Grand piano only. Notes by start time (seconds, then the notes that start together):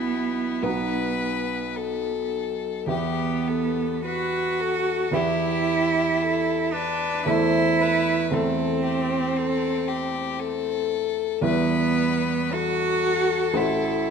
Already playing: B1 B3 E4 F#4
0.62 B1 B3 D#4 F#4
2.87 E2 B3 E4 G4
5.11 E2 B3 E4 G4
7.26 E2 A3 E4 A4
8.31 E2 A3 E4 A4
11.41 E2 G3 E4 B4
13.54 A1 A3 F#4 C5